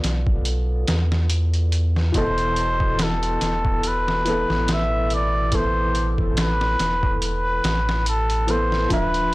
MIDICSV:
0, 0, Header, 1, 5, 480
1, 0, Start_track
1, 0, Tempo, 845070
1, 1222, Time_signature, 4, 2, 24, 8
1, 5307, End_track
2, 0, Start_track
2, 0, Title_t, "Muted trumpet"
2, 0, Program_c, 0, 59
2, 1229, Note_on_c, 0, 72, 102
2, 1719, Note_on_c, 0, 69, 95
2, 1727, Note_off_c, 0, 72, 0
2, 2201, Note_on_c, 0, 71, 101
2, 2209, Note_off_c, 0, 69, 0
2, 2685, Note_on_c, 0, 76, 108
2, 2694, Note_off_c, 0, 71, 0
2, 2913, Note_off_c, 0, 76, 0
2, 2922, Note_on_c, 0, 74, 104
2, 3156, Note_on_c, 0, 72, 103
2, 3164, Note_off_c, 0, 74, 0
2, 3485, Note_off_c, 0, 72, 0
2, 3640, Note_on_c, 0, 71, 100
2, 4088, Note_off_c, 0, 71, 0
2, 4118, Note_on_c, 0, 71, 103
2, 4567, Note_off_c, 0, 71, 0
2, 4592, Note_on_c, 0, 69, 96
2, 4831, Note_on_c, 0, 72, 100
2, 4839, Note_off_c, 0, 69, 0
2, 5066, Note_off_c, 0, 72, 0
2, 5070, Note_on_c, 0, 71, 110
2, 5307, Note_off_c, 0, 71, 0
2, 5307, End_track
3, 0, Start_track
3, 0, Title_t, "Felt piano"
3, 0, Program_c, 1, 0
3, 0, Control_c, 1, 64, 127
3, 0, Note_on_c, 1, 59, 74
3, 0, Note_on_c, 1, 65, 69
3, 0, Note_on_c, 1, 69, 72
3, 0, Note_on_c, 1, 74, 82
3, 1206, Note_on_c, 1, 52, 89
3, 1221, Note_on_c, 1, 47, 83
3, 1229, Note_off_c, 1, 65, 0
3, 1229, Control_c, 1, 64, 0
3, 1231, Note_off_c, 1, 69, 0
3, 1233, Note_off_c, 1, 59, 0
3, 1234, Note_off_c, 1, 74, 0
3, 1234, Note_on_c, 1, 69, 99
3, 1332, Control_c, 1, 64, 127
3, 2388, Note_off_c, 1, 52, 0
3, 2396, Note_off_c, 1, 47, 0
3, 2402, Note_off_c, 1, 69, 0
3, 2414, Note_on_c, 1, 52, 96
3, 2428, Note_on_c, 1, 59, 88
3, 2438, Note_on_c, 1, 69, 106
3, 3112, Note_off_c, 1, 52, 0
3, 3119, Note_off_c, 1, 59, 0
3, 3124, Note_off_c, 1, 69, 0
3, 3134, Note_on_c, 1, 52, 72
3, 3140, Note_on_c, 1, 59, 69
3, 3146, Note_on_c, 1, 69, 81
3, 3283, Note_off_c, 1, 52, 0
3, 3286, Note_off_c, 1, 59, 0
3, 3289, Note_off_c, 1, 69, 0
3, 4811, Note_on_c, 1, 52, 73
3, 4819, Note_on_c, 1, 59, 71
3, 4826, Note_on_c, 1, 69, 82
3, 4909, Note_off_c, 1, 52, 0
3, 4913, Note_off_c, 1, 59, 0
3, 4916, Note_off_c, 1, 69, 0
3, 5046, Note_on_c, 1, 53, 97
3, 5059, Note_on_c, 1, 62, 88
3, 5068, Control_c, 1, 64, 0
3, 5073, Note_on_c, 1, 76, 105
3, 5177, Control_c, 1, 64, 127
3, 5307, Note_off_c, 1, 53, 0
3, 5307, Note_off_c, 1, 62, 0
3, 5307, Note_off_c, 1, 76, 0
3, 5307, End_track
4, 0, Start_track
4, 0, Title_t, "Sub bass"
4, 0, Program_c, 2, 38
4, 24, Note_on_c, 2, 35, 78
4, 482, Note_off_c, 2, 35, 0
4, 505, Note_on_c, 2, 40, 96
4, 1203, Note_off_c, 2, 40, 0
4, 1218, Note_on_c, 2, 28, 96
4, 1919, Note_off_c, 2, 28, 0
4, 1942, Note_on_c, 2, 28, 79
4, 2530, Note_off_c, 2, 28, 0
4, 2555, Note_on_c, 2, 33, 97
4, 3841, Note_off_c, 2, 33, 0
4, 3861, Note_on_c, 2, 28, 84
4, 4321, Note_off_c, 2, 28, 0
4, 4340, Note_on_c, 2, 33, 97
4, 5040, Note_off_c, 2, 33, 0
4, 5061, Note_on_c, 2, 26, 94
4, 5307, Note_off_c, 2, 26, 0
4, 5307, End_track
5, 0, Start_track
5, 0, Title_t, "Drums"
5, 21, Note_on_c, 9, 42, 72
5, 25, Note_on_c, 9, 38, 53
5, 78, Note_off_c, 9, 42, 0
5, 82, Note_off_c, 9, 38, 0
5, 151, Note_on_c, 9, 36, 91
5, 208, Note_off_c, 9, 36, 0
5, 257, Note_on_c, 9, 42, 77
5, 313, Note_off_c, 9, 42, 0
5, 497, Note_on_c, 9, 42, 66
5, 501, Note_on_c, 9, 38, 111
5, 554, Note_off_c, 9, 42, 0
5, 558, Note_off_c, 9, 38, 0
5, 635, Note_on_c, 9, 38, 48
5, 692, Note_off_c, 9, 38, 0
5, 736, Note_on_c, 9, 42, 86
5, 793, Note_off_c, 9, 42, 0
5, 872, Note_on_c, 9, 42, 42
5, 929, Note_off_c, 9, 42, 0
5, 978, Note_on_c, 9, 42, 63
5, 1035, Note_off_c, 9, 42, 0
5, 1115, Note_on_c, 9, 38, 39
5, 1172, Note_off_c, 9, 38, 0
5, 1217, Note_on_c, 9, 36, 105
5, 1217, Note_on_c, 9, 42, 80
5, 1274, Note_off_c, 9, 36, 0
5, 1274, Note_off_c, 9, 42, 0
5, 1351, Note_on_c, 9, 42, 40
5, 1408, Note_off_c, 9, 42, 0
5, 1456, Note_on_c, 9, 42, 64
5, 1513, Note_off_c, 9, 42, 0
5, 1591, Note_on_c, 9, 36, 92
5, 1648, Note_off_c, 9, 36, 0
5, 1697, Note_on_c, 9, 42, 81
5, 1701, Note_on_c, 9, 38, 112
5, 1754, Note_off_c, 9, 42, 0
5, 1758, Note_off_c, 9, 38, 0
5, 1833, Note_on_c, 9, 42, 42
5, 1890, Note_off_c, 9, 42, 0
5, 1938, Note_on_c, 9, 42, 65
5, 1942, Note_on_c, 9, 38, 50
5, 1994, Note_off_c, 9, 42, 0
5, 1998, Note_off_c, 9, 38, 0
5, 2071, Note_on_c, 9, 36, 86
5, 2128, Note_off_c, 9, 36, 0
5, 2178, Note_on_c, 9, 42, 81
5, 2235, Note_off_c, 9, 42, 0
5, 2318, Note_on_c, 9, 38, 50
5, 2375, Note_off_c, 9, 38, 0
5, 2418, Note_on_c, 9, 42, 65
5, 2474, Note_off_c, 9, 42, 0
5, 2556, Note_on_c, 9, 38, 40
5, 2613, Note_off_c, 9, 38, 0
5, 2659, Note_on_c, 9, 42, 84
5, 2663, Note_on_c, 9, 38, 111
5, 2715, Note_off_c, 9, 42, 0
5, 2719, Note_off_c, 9, 38, 0
5, 2899, Note_on_c, 9, 42, 67
5, 2955, Note_off_c, 9, 42, 0
5, 3134, Note_on_c, 9, 42, 83
5, 3138, Note_on_c, 9, 36, 102
5, 3191, Note_off_c, 9, 42, 0
5, 3194, Note_off_c, 9, 36, 0
5, 3379, Note_on_c, 9, 42, 65
5, 3436, Note_off_c, 9, 42, 0
5, 3512, Note_on_c, 9, 36, 89
5, 3569, Note_off_c, 9, 36, 0
5, 3618, Note_on_c, 9, 42, 82
5, 3622, Note_on_c, 9, 38, 108
5, 3675, Note_off_c, 9, 42, 0
5, 3679, Note_off_c, 9, 38, 0
5, 3755, Note_on_c, 9, 38, 48
5, 3812, Note_off_c, 9, 38, 0
5, 3859, Note_on_c, 9, 42, 71
5, 3863, Note_on_c, 9, 38, 56
5, 3916, Note_off_c, 9, 42, 0
5, 3920, Note_off_c, 9, 38, 0
5, 3993, Note_on_c, 9, 36, 88
5, 4050, Note_off_c, 9, 36, 0
5, 4100, Note_on_c, 9, 42, 83
5, 4157, Note_off_c, 9, 42, 0
5, 4340, Note_on_c, 9, 42, 65
5, 4344, Note_on_c, 9, 38, 102
5, 4397, Note_off_c, 9, 42, 0
5, 4401, Note_off_c, 9, 38, 0
5, 4480, Note_on_c, 9, 38, 51
5, 4537, Note_off_c, 9, 38, 0
5, 4579, Note_on_c, 9, 42, 87
5, 4636, Note_off_c, 9, 42, 0
5, 4713, Note_on_c, 9, 42, 45
5, 4769, Note_off_c, 9, 42, 0
5, 4817, Note_on_c, 9, 42, 64
5, 4874, Note_off_c, 9, 42, 0
5, 4954, Note_on_c, 9, 38, 42
5, 5011, Note_off_c, 9, 38, 0
5, 5057, Note_on_c, 9, 42, 81
5, 5058, Note_on_c, 9, 36, 104
5, 5114, Note_off_c, 9, 42, 0
5, 5115, Note_off_c, 9, 36, 0
5, 5193, Note_on_c, 9, 42, 41
5, 5249, Note_off_c, 9, 42, 0
5, 5307, End_track
0, 0, End_of_file